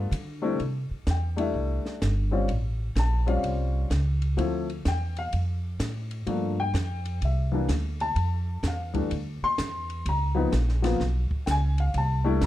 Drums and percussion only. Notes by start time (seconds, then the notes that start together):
0.12 hi-hat pedal, ride
0.60 ride
1.07 snare, hi-hat pedal, ride
1.38 ride
1.86 snare
2.02 snare, hi-hat pedal, ride
2.49 ride
2.96 snare, hi-hat pedal, ride
3.28 ride
3.44 ride
3.91 snare, hi-hat pedal, ride
4.22 ride
4.38 ride
4.70 ride
4.85 snare, hi-hat pedal, ride
5.17 ride
5.33 ride
5.80 snare, hi-hat pedal, ride
6.11 ride
6.27 ride
6.75 snare, hi-hat pedal, ride
7.05 ride
7.22 ride
7.69 snare, hi-hat pedal, ride
8.00 ride
8.16 ride
8.63 snare, hi-hat pedal, ride
8.94 kick, ride
9.11 ride
9.58 snare, hi-hat pedal, ride
9.90 ride
10.06 ride
10.52 snare, hi-hat pedal, ride
10.69 snare
10.84 snare, ride
11.00 snare
11.31 kick
11.47 snare, hi-hat pedal, ride
11.78 ride
11.94 ride
12.41 snare, hi-hat pedal, ride